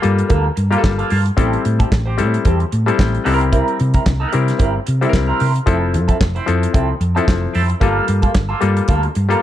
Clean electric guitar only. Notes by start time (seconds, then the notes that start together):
0.02 muted clean electric guitar stroke
0.17 muted clean electric guitar stroke
0.29 A#3 F4 A4
0.44 muted clean electric guitar stroke
0.56 muted clean electric guitar stroke
0.71 A#3 F4 A#4
0.83 muted clean electric guitar stroke
0.98 A#3 F4 A4
1.10 A#3 F4 A4
1.25 muted clean electric guitar stroke
1.37 C4 G4 A4
1.64 muted clean electric guitar stroke
1.79 C4 G4 A4
1.90 muted clean electric guitar stroke
2.06 C4 G4 C5
2.18 muted clean electric guitar stroke
2.33 muted clean electric guitar stroke
2.45 C4 G4 A4
2.60 muted clean electric guitar stroke
2.72 muted clean electric guitar stroke
2.86 C4 G4 A4
2.98 muted clean electric guitar stroke
3.13 muted clean electric guitar stroke
3.24 C4 E4 A#4
3.40 muted clean electric guitar stroke
3.52 C4 E4 A#4
3.79 muted clean electric guitar stroke
3.94 C4 E4 A#4
4.06 muted clean electric guitar stroke
4.20 C4 E4 A#4
4.33 muted clean electric guitar stroke
4.46 muted clean electric guitar stroke
4.58 C4 E4 A#4
4.74 muted clean electric guitar stroke
4.86 muted clean electric guitar stroke
5.01 C4 E4 C5
5.27 C4 E4 A#4
5.40 C4 E4 A#4
5.66 C4 E4 A4
5.94 muted clean electric guitar stroke
6.08 C4 E4 A4
6.20 muted clean electric guitar stroke
6.35 C4 E4 C5
6.62 muted clean electric guitar stroke
6.74 C4 E4 A4
6.89 muted clean electric guitar stroke
7.01 muted clean electric guitar stroke
7.15 C4 E4 A4
7.27 muted clean electric guitar stroke
7.42 muted clean electric guitar stroke
7.54 C4 E4 A4
7.68 muted clean electric guitar stroke
7.80 A#3 F4 A4
8.08 muted clean electric guitar stroke
8.22 A#3 F4 A4
8.34 muted clean electric guitar stroke
8.49 A#3 F4 A4
8.61 muted clean electric guitar stroke
8.77 muted clean electric guitar stroke
8.88 A#3 F4 A4
9.03 muted clean electric guitar stroke
9.16 muted clean electric guitar stroke
9.31 A#3 F4 A#4